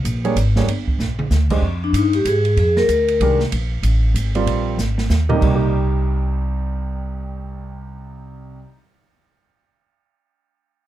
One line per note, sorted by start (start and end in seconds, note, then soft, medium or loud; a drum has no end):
0.05 0.35 A#1 medium
0.05 hi-hat pedal medium
0.05 ride medium
0.24 0.35 G3 medium
0.24 0.35 A#3 medium
0.24 0.35 D4 medium
0.24 0.36 G#4 medium
0.24 0.36 C#5 medium
0.24 ride soft
0.35 0.67 G#1 medium
0.35 hi-hat pedal medium
0.35 ride medium
0.56 0.67 G3 medium
0.56 0.67 A#3 medium
0.56 0.67 D4 soft
0.56 0.67 G#4 medium
0.56 0.68 C#5 medium
0.56 snare medium
0.67 0.98 G1 medium
0.67 ride medium
0.88 kick medium
0.99 1.30 A#1 medium
0.99 snare soft
0.99 hi-hat pedal soft
1.19 high tom medium
1.30 1.61 D2 medium
1.30 snare medium
1.30 hi-hat pedal medium
1.50 1.62 G#3 medium
1.50 1.62 D4 medium
1.50 1.62 G4 medium
1.50 1.62 C5 medium
1.50 1.62 D#5 medium
1.50 kick medium
1.50 crash medium
1.62 1.92 F2 medium
1.84 1.96 D4 medium
1.93 2.24 G2 medium
1.93 2.13 D#4 medium
1.93 hi-hat pedal medium
1.93 ride medium
2.13 2.26 G4 medium
2.13 ride soft
2.25 2.56 G#2 medium
2.25 2.56 G#4 medium
2.25 hi-hat pedal medium
2.25 ride medium
2.45 ride soft
2.57 2.88 F2 medium
2.57 2.78 G#4 medium
2.57 ride medium
2.77 3.36 A#4 medium
2.77 snare soft
2.88 3.19 D2 medium
2.88 hi-hat pedal medium
2.88 ride medium
3.08 ride soft
3.20 3.51 C2 medium
3.20 3.39 D#3 medium
3.20 3.39 G#3 medium
3.20 3.39 D4 medium
3.20 3.39 G4 medium
3.20 3.39 A#4 medium
3.20 ride medium
3.40 snare soft
3.52 3.82 A#1 medium
3.52 ride medium
3.83 4.14 A1 medium
3.83 hi-hat pedal medium
3.83 ride medium
4.14 4.46 G#1 medium
4.14 hi-hat pedal medium
4.14 ride medium
4.35 4.76 G3 medium
4.35 4.77 C4 medium
4.35 4.77 F4 medium
4.35 4.77 A#4 medium
4.35 4.77 D5 medium
4.35 ride soft
4.46 4.77 A#1 medium
4.46 ride medium
4.78 5.09 G#1 medium
4.78 snare soft
4.78 hi-hat pedal medium
4.98 snare medium
5.09 5.41 D#2 medium
5.09 snare medium
5.09 hi-hat pedal soft
5.29 8.55 C2 medium
5.29 5.71 A#3 medium
5.29 5.48 D#4 medium
5.29 5.54 G4 medium
5.29 5.71 A#4 medium
5.29 5.71 D#5 medium
5.29 mid tom medium
5.36 8.62 C3 medium
5.41 8.62 C2 medium
5.41 8.68 G3 medium
5.41 kick medium
5.41 crash medium
5.49 8.74 D#4 medium
5.55 8.80 G4 medium